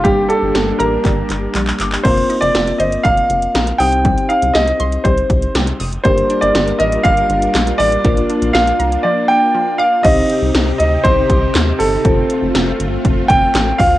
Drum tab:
CC |----------------|x---------------|----------------|----------------|
HH |x-x-x-x-x-x-x-x-|xxxxxxxxxxxxxxox|xxxxxxxxxxxxxxox|xxxxxxxxxxxxxxox|
CP |--------x-x-xxxx|----------------|----------------|------------x---|
SD |----o-----------|----o-------o---|----o-------o---|----o-------o---|
BD |o-------o-------|o-------o-------|o-------o-o-----|o-------o-------|

CC |----------------|x---------------|----------------|
HH |xxxxxxxx--------|x-x-x-x-x-x-x-o-|x-x-x-x-x-x-x-o-|
CP |----------------|------------x---|------------x---|
SD |----o-----------|----o-------o---|----o-------o---|
BD |o---------------|o-------o-o-----|o-------o-o---o-|